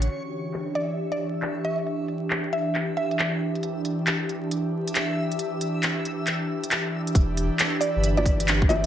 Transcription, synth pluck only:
0.75 D5
1.12 D5
1.65 E5
2.53 E5
2.97 E5
7.81 D5
8.17 D5
8.69 E5

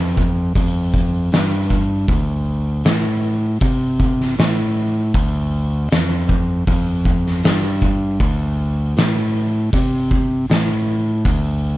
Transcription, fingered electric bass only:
Already playing: F2
0.56 F2
1.32 G2
2.09 D2
2.85 A2
3.61 C3
4.39 A2
5.14 D2
5.92 F2
6.67 F2
7.44 G2
8.20 D2
8.97 A2
9.74 C3
10.50 A2
11.25 D2

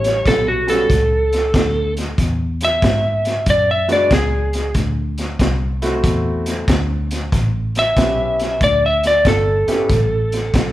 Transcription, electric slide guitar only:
Already playing: C#5
0.27 A4
0.48 F#4
0.70 A4
2.65 E5
3.50 D5
3.71 E5
3.92 D5
4.14 G#4
7.79 E5
8.64 D5
8.86 E5
9.07 D5
9.28 A4

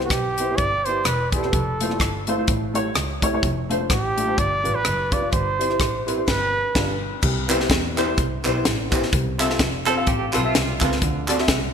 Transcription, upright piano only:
Already playing: C3
0.03 B3 G4
0.39 B3 E4 G4 C5
0.49 B3 E4 G4 C5
0.87 B3 E4 G4 D5
1.33 B3 E4 G4 D5
1.44 B3 E4 G4 C5
1.80 A3 E4 F4 C5
1.89 A3 E4 F4 D5
2.27 A3 E4 F4 C5
2.37 A3 E4 F4 C5
2.48 A2
2.74 A3 E4 G4 C#5
3.22 A3 E4 G4 C#5
3.33 A3 E4 G4 C#5
3.69 A3 D4 F4 C5
3.79 A3 D4 F4 C5
4.17 A3 D4 F4 G4
4.26 A3 D4 F4 C5
4.36 G2
4.63 G3 D4 F4 B4
5.10 G3 D4 F4 B4
5.20 G3 D4 F4 D5
5.31 G2
5.58 G3 C4 E4 C5
5.68 G3 C4 E4 C5
6.06 G3 C4 E4 B4
6.16 G3 C4 E4 C5
6.74 G3 D4 F4 B4
7.22 C3
7.48 B3 E4 G4 C5
7.59 B3 E4 G4 C5
7.97 B3 E4 G4 C5
8.06 B3 E4 G4 C5
8.44 B3 E4 G4 C5
8.53 B3 E4 G4 C5
8.90 B3 E4 G4 C5
9.12 C3
9.38 C4 F4 A4 E5
9.49 C4 F4 A4 E5
9.86 C4 F4 A4 C5
9.96 C4 F4 A4 F5
10.33 C4 F4 A4 B4
10.43 C4 F4 A4 E5
10.80 C4 F4 A4 B4
11.02 D3
11.28 C4 F#4 A4 D5
11.38 C4 F#4 A4 E5

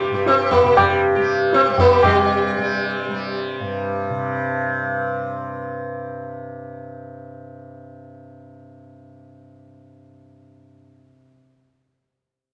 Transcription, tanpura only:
Already playing: G2 C3 G3
0.10 G2
0.63 C3
1.16 G3
1.67 G3
2.04 C3
2.57 G3
3.08 G3
3.60 G2
4.10 C3

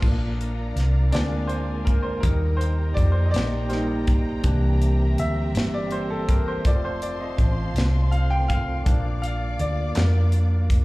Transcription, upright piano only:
0.01 F3 A#3 D4
1.11 G#3 C4 D4 D5
1.47 C5
1.85 A#4
2.03 C5
2.20 G3 A#3 D#4 A#4
2.57 C5
2.94 D5
3.12 C5
3.25 D#5
3.31 D5
3.69 G3 A#3 D#4 C5
4.42 E3 A#3 D4
5.19 E5
5.74 D5
5.92 C5
6.10 A4
6.29 A#4
6.48 C5
6.66 F3 A3 C4 D5
6.85 C5
7.02 D5
7.20 D#5
8.11 F5
8.30 G5
8.48 F5
8.85 F3 A#3 D4
9.22 F5
9.60 D5
9.95 A#4

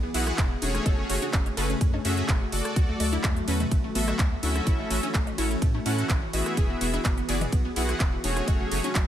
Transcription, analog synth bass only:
0.14 B1
0.38 E1
0.62 E1
0.86 F#1
1.10 F#1
1.33 F#1
1.57 F#1
1.81 F#2
2.05 F#2
2.29 F#1
2.52 F#1
2.76 D2
3.00 D2
3.24 E2
3.48 E2
3.72 A1
3.95 A1
4.19 D2
4.43 D2
4.67 A1
4.91 A1
5.14 A1
5.38 A1
5.62 A2
5.86 A2
6.10 A1
6.33 A1
6.57 E1
6.81 E1
7.05 F#1
7.29 F#1
7.52 B1
7.76 B1
8.00 E1
8.24 E1
8.48 F#1
8.72 F#1
8.95 F#1

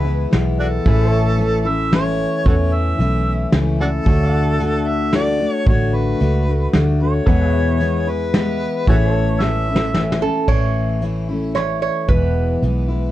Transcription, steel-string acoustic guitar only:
0.04 E3 G#3 B3 E4
0.31 E3 G#3 B3 E4
0.85 A2 E3 A3 C#4 E4
1.37 E3 A3 C#4 E4
1.65 C#4 E4
1.91 E3 A3 C#4 E4
2.45 A2 E3 A3 C#4 E4
2.98 E3 A3 C#4 E4
3.53 E3 A3 C#4 E4
3.79 A3 C#4 E4
4.05 D3 A3 D4 F#4
4.59 D3 A3 D4 F#4
5.13 D3 A3 D4 F#4
5.40 A3 D4 F#4
5.67 D3 A3 D4 F#4
6.20 D3 A3 D4 F#4
6.46 A3 D4 F#4
6.73 D3 A3 D4 F#4
7.00 A3 D4 F#4
7.26 E2 B2 E3 G#3 B3 E4
7.80 E3 G#3 B3 E4
8.07 E3 G#3 B3 E4
8.34 E3 G#3 B3 E4
8.88 A2 E3 A3 C#4 E4
9.41 E3 A3 C#4 E4
9.68 A3 C#4 E4
9.95 E3 A3 C#4 E4
10.21 A3 C#4 E4
10.48 A2 E3 A3 C#4 E4
11.01 E3 A3 C#4 E4
11.29 A3 C#4 E4
11.55 E3 A3 C#4 E4
12.08 E2 B2 E3 G#3 B3 E4
12.63 E3 G#3 B3 E4
12.88 E3 G#3 B3 E4

